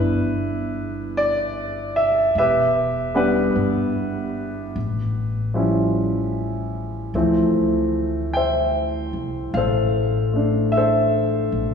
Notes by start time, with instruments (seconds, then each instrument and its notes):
Already playing: upright bass G1, grand piano G3 B3 D4 E4 B4
1.17 grand piano D5
1.96 grand piano E5
2.35 upright bass E1, grand piano B4 E5
2.39 grand piano G4
3.14 grand piano G3 B3 D4 G4 B4 F#5
3.56 upright bass G1
4.76 upright bass A1
5.54 grand piano F3 G3 C#4 E4
7.14 upright bass D2, grand piano E3 F3 A3 C4
8.33 grand piano C5 E5 G5
9.13 upright bass C2
9.54 upright bass A1, grand piano A4 C5 F5
10.33 grand piano A3 D4
10.72 grand piano E5
10.77 grand piano A4 C5
11.52 upright bass A1